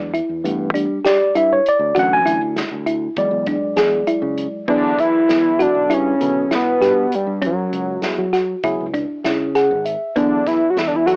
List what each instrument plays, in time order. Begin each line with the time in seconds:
Already playing: fingered electric bass E2, tine electric piano G#3 D4
0.14 synth arpeggio sound E4, closed hi-hat
0.29 fingered electric bass E2
0.44 fingered electric bass G2, tine electric piano E3 A3 B3, closed hi-hat
0.74 fingered electric bass G3, synth arpeggio sound D4, closed hi-hat
1.05 synth arpeggio sound G4, tine electric piano D5, snare, closed hi-hat
1.35 fingered electric bass G2, synth arpeggio sound E4, tine electric piano E5, closed hi-hat
1.53 tine electric piano C#5
1.66 tine electric piano D5, closed hi-hat
1.79 fingered electric bass D2
1.95 fingered electric bass D2, tine electric piano E3 F#3 C#4, synth arpeggio sound F#4, kick, closed hi-hat
1.99 tine electric piano F#5
2.13 tine electric piano G#5
2.25 fingered electric bass D2, synth arpeggio sound E4, closed hi-hat
2.56 snare, closed hi-hat
2.71 fingered electric bass D2
2.86 synth arpeggio sound E4, closed hi-hat
3.16 fingered electric bass E2, tine electric piano F#3 G#3 D5, kick, closed hi-hat
3.31 fingered electric bass E2
3.46 synth arpeggio sound D4, kick, closed hi-hat
3.76 fingered electric bass E2, synth arpeggio sound G#4, snare, closed hi-hat
4.07 synth arpeggio sound E4, closed hi-hat
4.22 fingered electric bass C#3
4.38 closed hi-hat
4.68 fingered electric bass E2, tine electric piano F#3 B3 E4 G#4, synth arpeggio sound B3, analog synth lead D4, kick, crash
4.99 analog synth lead E4, kick, closed hi-hat
5.29 fingered electric bass E2, snare, closed hi-hat
5.59 tine electric piano F#3 B3 E4 A4, analog synth lead D4, synth arpeggio sound F#4, closed hi-hat
5.75 fingered electric bass B1
5.89 fingered electric bass G2, synth arpeggio sound E4, closed hi-hat
5.94 analog synth lead C#4
6.20 fingered electric bass B2, synth arpeggio sound D3, tine electric piano F#3 B3 E4 A4, closed hi-hat
6.51 analog synth lead B3, synth arpeggio sound E4, snare, closed hi-hat
6.80 fingered electric bass G2, synth arpeggio sound G4, snare, closed hi-hat
7.12 analog synth lead G3, closed hi-hat
7.27 fingered electric bass G2
7.42 fingered electric bass F#2, synth arpeggio sound C#4, kick, closed hi-hat
7.46 analog synth lead F#3
7.73 fingered electric bass C#2, closed hi-hat
8.02 tine electric piano F#3 B3 E4 G#4, snare, closed hi-hat
8.18 fingered electric bass F#3
8.33 synth arpeggio sound F#4, snare, closed hi-hat
8.63 fingered electric bass C#2, tine electric piano F#3 B3 E4 G#4, synth arpeggio sound E4, kick, closed hi-hat
8.80 fingered electric bass C#2
8.93 synth arpeggio sound D4, kick, closed hi-hat
9.24 fingered electric bass C#3, synth arpeggio sound E4, snare, closed hi-hat
9.55 synth arpeggio sound G#4, tine electric piano F#5, snare, closed hi-hat
9.71 fingered electric bass G#1
9.85 tine electric piano E5, closed hi-hat
10.16 fingered electric bass E2, tine electric piano F#3 B3 E4 G#4, synth arpeggio sound B3, analog synth lead D4, kick, closed hi-hat
10.47 analog synth lead E4, kick, snare, closed hi-hat
10.70 analog synth lead F#4
10.77 fingered electric bass E2, analog synth lead E4, snare, closed hi-hat
10.87 analog synth lead D4
10.96 analog synth lead E4
11.06 tine electric piano F#3 B3 E4 A4, analog synth lead F#4, synth arpeggio sound F#4, closed hi-hat